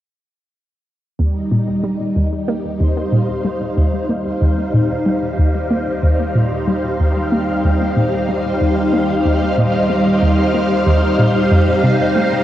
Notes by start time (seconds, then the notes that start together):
1.19 D#2 G3
1.30 D#4
1.51 A#2
1.84 G3
2.16 D#2
2.32 G4
2.48 A#3
2.77 D#2 C5
3.02 F5
3.12 A#2
3.45 G3
3.77 D#2
4.09 A#3
4.41 D#2
4.74 A#2
5.06 G3
5.38 D#2
5.71 A#3
6.03 D#2
6.35 A#2
6.68 G3
7.00 D#2
7.32 A#3
7.64 D#2
7.96 A#2
8.29 G3
8.61 D#2
8.93 A#3
9.25 D#2
9.58 A#2
9.90 G3
10.22 D#2
10.54 A#3
10.86 D#2
11.19 A#2
11.51 F2
11.83 C3
12.16 A3